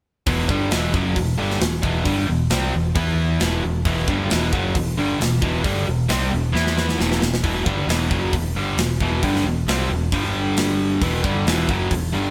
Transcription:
0.26 E1 E2 B2 E3, kick, open hi-hat
0.49 G1 G2 D3 G3, kick
0.71 E1 E2 B2 E3, snare, open hi-hat
0.94 F#1 F#2 C#3 F#3, kick
1.16 E1 E2 B2, kick, open hi-hat
1.38 G1 G2 D3 G3
1.50 snare
1.60 E1 E2 B2, snare, open hi-hat
1.82 E1 E2 B2 E3, kick
2.04 G1 G2 D3 G3, kick, open hi-hat
2.27 E1 E2 B2
2.50 C2 C3 G3 C4, snare, open hi-hat
2.73 E1 E2 B2
2.95 E2 E3 B3 E4, kick, open hi-hat
3.40 E1 E2 B2 E3, snare, open hi-hat
3.63 E1 E2 B2
3.85 E1 E2 B2 E3, kick, open hi-hat
4.08 G1 G2 D3 G3, kick
4.30 E1 E2 B2 E3, snare, open hi-hat
4.53 F#1 F#2 C#3 F#3, kick
4.75 E1 E2 B2, kick, open hi-hat
4.97 G1 G2 D3 G3
5.20 E1 E2 B2, snare, open hi-hat
5.42 E1 E2 B2 E3, kick
5.63 G1 G2 D3 G3, kick, open hi-hat
5.87 E1 E2 B2
6.08 C2 C3 G3 C4, snare, open hi-hat
6.31 E1 E2 B2
6.52 E2 E3 B3 E4, snare
6.67 snare
6.78 snare
6.89 snare
6.98 E1 E2 B2 E3, snare
7.12 snare
7.21 E1 E2 B2, snare
7.34 snare
7.43 E1 E2 B2 E3, kick, open hi-hat
7.65 G1 G2 D3 G3, kick
7.87 E1 E2 B2 E3, snare, open hi-hat
8.11 F#1 F#2 C#3 F#3, kick
8.33 E1 E2 B2, kick, open hi-hat
8.55 G1 G2 D3 G3
8.77 E1 E2 B2, snare, open hi-hat
9.01 E1 E2 B2 E3, kick
9.23 G1 G2 D3 G3, kick, open hi-hat
9.36 snare
9.44 E1 E2 B2
9.67 C2 C3 G3 C4, snare, open hi-hat
9.89 E1 E2 B2
10.12 G1 G2 D3 G3, kick, open hi-hat
10.57 snare, open hi-hat
11.01 E1 E2 B2 E3, kick, open hi-hat
11.24 G1 G2 D3 G3, kick
11.46 E1 E2 B2 E3, snare, open hi-hat
11.69 F#1 F#2 C#3 F#3, kick
11.91 E1 E2 B2, kick, open hi-hat
12.13 G1 G2 D3 G3

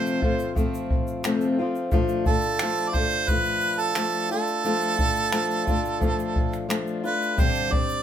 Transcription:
Already playing: F2 C3 F3 A3 C4 F4 C5
0.06 shaker
0.21 F3 A3 C4 F4, kick
0.39 shaker
0.55 F3 A3 C4 F4, kick, shaker
0.74 shaker
0.91 kick
1.07 shaker
1.24 F2 C3 F3 A3 C4 F4, finger snap, shaker
1.41 shaker
1.59 F3 A3 C4 F4
1.75 shaker
1.91 F3 A3 D4 F4, kick, shaker
2.08 shaker
2.26 A3 D4 F4 A4, kick, shaker
2.42 shaker
2.59 F3 A3 D4 F4, finger snap, shaker
2.78 shaker
2.89 D5
2.94 A3 D4 F4 C5, kick, shaker
3.11 shaker
3.28 F3 A3 D4 F4 B4, kick, shaker
3.45 shaker
3.61 shaker
3.79 A4, shaker
3.95 F3 A3 D4 F4, finger snap, shaker
4.12 shaker
4.30 A3 D4 F4 A4, shaker
4.47 shaker
4.64 F3 A3 D4 F4, shaker
4.81 shaker
4.99 A3 D4 F4, kick, shaker
5.15 shaker
5.32 F3 A3 D4 F4, finger snap, shaker
5.51 shaker
5.67 A3 D4 F4, kick, shaker
5.85 shaker
6.00 F3 A3 D4 F4, kick, shaker
6.19 shaker
6.36 kick
6.53 finger snap, shaker
6.69 F3 A3 D4 F4, finger snap, shaker
6.87 shaker
7.04 A3 D4 F4 B4, shaker
7.22 shaker
7.37 G2 D3 G3 C4 D4 G4 C5, kick, shaker
7.55 shaker
7.70 G3 C4 D4 G4 D5, kick
7.89 shaker

